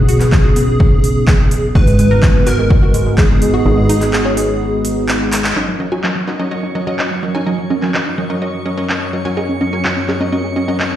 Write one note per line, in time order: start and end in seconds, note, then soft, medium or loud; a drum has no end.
0.00 1.73 B1 medium
0.00 1.72 B3 medium
0.00 1.71 C#4 medium
0.00 1.71 D#4 medium
0.00 1.66 G#4 loud
0.09 0.18 F#4 medium
0.09 open hi-hat loud
0.20 0.30 B3 medium
0.20 clap soft
0.20 open hi-hat medium
0.32 0.42 B3 medium
0.32 kick loud
0.32 clap loud
0.44 0.54 F#4 medium
0.56 0.66 B3 medium
0.56 open hi-hat loud
0.80 kick loud
1.04 open hi-hat loud
1.28 kick loud
1.28 clap loud
1.51 open hi-hat loud
1.75 3.63 G#1 medium
1.75 5.52 G#3 medium
1.75 5.52 B3 medium
1.75 5.52 D#4 medium
1.75 5.52 F#4 medium
1.75 1.85 F#4 loud
1.75 2.48 B4 loud
1.75 kick loud
1.87 1.96 G#3 medium
1.87 open hi-hat medium
1.99 2.08 G#3 medium
1.99 open hi-hat loud
2.11 2.20 A#4 loud
2.23 2.32 G#3 medium
2.23 kick loud
2.23 clap loud
2.35 2.44 G#3 medium
2.47 2.56 F#4 loud
2.47 3.09 A#4 loud
2.47 clap soft
2.47 open hi-hat loud
2.59 2.68 G#3 medium
2.70 2.80 G#3 medium
2.70 kick loud
2.82 2.92 F#4 medium
2.94 3.04 G#3 medium
2.94 open hi-hat loud
3.06 3.15 G#3 medium
3.18 5.47 G#4 loud
3.18 kick loud
3.18 clap loud
3.30 3.39 G#3 medium
3.42 3.51 G#3 medium
3.42 open hi-hat loud
3.54 3.63 F#4 medium
3.66 5.54 G#1 medium
3.66 3.75 G#3 medium
3.78 3.87 G#3 medium
3.89 3.99 D#4 loud
3.89 open hi-hat loud
4.01 4.11 G#3 medium
4.01 clap soft
4.01 open hi-hat medium
4.13 4.23 G#3 medium
4.13 clap loud
4.25 4.35 C#4 medium
4.37 4.46 G#3 medium
4.37 open hi-hat loud
4.85 open hi-hat loud
5.08 clap loud
5.32 clap medium
5.32 open hi-hat loud
5.44 clap loud
5.56 10.96 F#2 medium
5.56 5.77 F#3 medium
5.56 10.96 F#3 medium
5.56 5.77 C#4 medium
5.56 5.65 D#4 loud
5.56 10.96 D#4 medium
5.56 5.77 F#4 medium
5.56 5.77 A#4 medium
5.56 10.96 A#4 medium
5.56 10.96 C#5 medium
5.56 5.77 D#5 medium
5.56 10.96 C#6 medium
5.68 5.77 F#3 medium
5.80 5.89 F#3 medium
5.80 5.90 F#3 medium
5.80 5.90 C#4 medium
5.80 5.90 F#4 medium
5.80 5.90 A#4 medium
5.80 5.90 D#5 medium
5.92 6.01 F#3 medium
5.92 6.01 C#4 medium
5.92 6.01 F#4 medium
5.92 6.01 A#4 medium
5.92 6.01 G#5 medium
6.04 6.13 F#3 medium
6.04 6.24 F#3 medium
6.04 6.24 C#4 medium
6.04 6.24 F#4 medium
6.04 6.24 A#4 medium
6.04 6.24 D#5 medium
6.04 clap loud
6.15 6.25 F#3 medium
6.27 6.38 F#3 medium
6.27 6.38 C#4 medium
6.27 6.37 D#4 medium
6.27 6.38 F#4 medium
6.27 6.38 A#4 medium
6.27 6.38 D#5 medium
6.27 clap soft
6.39 6.49 F#3 medium
6.39 6.50 F#3 medium
6.39 6.50 C#4 medium
6.39 6.50 F#4 medium
6.39 6.50 A#4 medium
6.39 6.50 D#5 loud
6.51 6.61 F#3 medium
6.51 6.72 F#3 medium
6.51 6.72 C#4 medium
6.51 6.72 F#4 medium
6.51 6.72 A#4 medium
6.51 6.72 D#5 medium
6.63 6.73 D#4 medium
6.75 6.84 F#3 medium
6.75 6.84 C#4 medium
6.75 6.84 F#4 medium
6.75 6.84 A#4 medium
6.75 6.84 D#5 medium
6.87 6.96 F#3 medium
6.87 6.97 F#3 medium
6.87 6.97 C#4 medium
6.87 6.97 F#4 medium
6.87 6.97 A#4 medium
6.87 6.97 D#5 loud
6.99 7.11 F#3 medium
6.99 7.11 C#4 medium
6.99 7.11 F#4 medium
6.99 7.11 A#4 medium
6.99 7.11 D#5 medium
6.99 clap loud
7.11 7.20 F#3 medium
7.23 7.32 F#3 medium
7.23 7.32 C#4 medium
7.23 7.32 F#4 medium
7.23 7.32 A#4 medium
7.23 7.32 D#5 medium
7.35 7.45 F#3 loud
7.35 7.45 C#4 medium
7.35 7.44 D#4 medium
7.35 7.45 F#4 medium
7.35 7.45 A#4 medium
7.35 7.45 G#5 loud
7.46 7.68 F#3 medium
7.46 7.56 F#3 medium
7.46 7.68 C#4 medium
7.46 7.68 F#4 medium
7.46 7.68 A#4 medium
7.46 7.68 D#5 medium
7.58 7.68 F#3 medium
7.70 7.81 F#3 medium
7.70 7.80 C#4 medium
7.70 7.81 C#4 medium
7.70 7.81 F#4 medium
7.70 7.81 A#4 medium
7.70 7.81 D#5 medium
7.82 7.91 F#3 medium
7.82 7.92 F#3 medium
7.82 7.91 C#4 medium
7.82 7.91 F#4 medium
7.82 7.91 A#4 medium
7.82 7.91 G#5 medium
7.82 clap soft
7.94 8.04 F#3 medium
7.94 8.14 F#3 medium
7.94 8.14 C#4 medium
7.94 8.14 F#4 medium
7.94 8.14 A#4 medium
7.94 8.14 D#5 medium
7.94 clap loud
8.06 8.15 D#4 medium
8.18 8.27 F#3 medium
8.18 8.28 F#3 medium
8.18 8.28 C#4 medium
8.18 8.28 F#4 medium
8.18 8.28 A#4 medium
8.18 8.28 D#5 medium
8.30 8.40 F#3 medium
8.30 8.40 C#4 medium
8.30 8.40 F#4 medium
8.30 8.40 A#4 medium
8.30 8.40 D#5 loud
8.42 8.63 F#3 medium
8.42 8.63 C#4 medium
8.42 8.63 F#4 medium
8.42 8.63 A#4 medium
8.42 8.63 D#5 medium
8.66 8.75 F#3 medium
8.66 8.75 C#4 medium
8.66 8.75 F#4 medium
8.66 8.75 A#4 medium
8.66 8.75 D#5 medium
8.78 8.88 F#3 medium
8.78 8.88 C#4 medium
8.78 8.88 F#4 medium
8.78 8.88 A#4 medium
8.78 8.88 D#5 loud
8.89 9.02 F#3 medium
8.89 9.02 C#4 medium
8.89 9.02 F#4 medium
8.89 9.02 A#4 medium
8.89 9.02 D#5 medium
8.89 clap loud
9.13 9.22 F#3 medium
9.13 9.22 C#4 medium
9.13 9.22 F#4 medium
9.13 9.22 A#4 medium
9.13 9.22 D#5 medium
9.25 9.35 F#3 loud
9.25 9.35 C#4 medium
9.25 9.35 F#4 medium
9.25 9.35 A#4 medium
9.25 9.35 G#5 loud
9.37 9.58 F#3 medium
9.37 9.58 C#4 medium
9.37 9.58 F#4 medium
9.37 9.46 G#4 loud
9.37 9.58 A#4 medium
9.37 9.58 D#5 medium
9.49 9.58 C#4 medium
9.61 9.71 F#3 medium
9.61 9.70 C#4 medium
9.61 9.71 C#4 medium
9.61 9.71 F#4 medium
9.61 9.71 A#4 medium
9.61 9.71 D#5 medium
9.73 9.82 F#3 medium
9.73 9.82 C#4 medium
9.73 9.82 F#4 medium
9.73 9.82 A#4 medium
9.73 9.82 G#5 medium
9.85 10.05 F#3 medium
9.85 10.04 C#4 medium
9.85 9.94 C#4 medium
9.85 10.05 F#4 medium
9.85 10.04 A#4 medium
9.85 10.04 D#5 medium
9.85 clap loud
9.97 10.06 C#4 medium
10.08 10.19 F#3 medium
10.08 10.19 C#4 medium
10.08 10.19 F#4 medium
10.08 10.18 G#4 medium
10.08 10.19 A#4 medium
10.08 10.19 D#5 medium
10.08 clap soft
10.20 10.31 F#3 medium
10.20 10.31 C#4 medium
10.20 10.30 C#4 medium
10.20 10.31 F#4 medium
10.20 10.31 A#4 medium
10.20 10.31 D#5 loud
10.32 10.53 F#3 medium
10.32 10.42 C#4 medium
10.32 10.53 C#4 medium
10.32 10.53 F#4 medium
10.32 10.53 A#4 medium
10.32 10.53 D#5 medium
10.44 10.54 G#4 medium
10.56 10.65 F#3 medium
10.56 10.65 C#4 medium
10.56 10.66 C#4 medium
10.56 10.65 F#4 medium
10.56 10.65 A#4 medium
10.56 10.65 D#5 medium
10.68 10.78 F#3 medium
10.68 10.78 C#4 medium
10.68 10.77 C#4 medium
10.68 10.78 F#4 medium
10.68 10.78 A#4 medium
10.68 10.78 D#5 loud
10.80 10.92 F#3 medium
10.80 10.92 C#4 medium
10.80 10.92 F#4 medium
10.80 10.92 A#4 medium
10.80 10.92 D#5 medium
10.80 clap loud
10.92 10.96 C#4 medium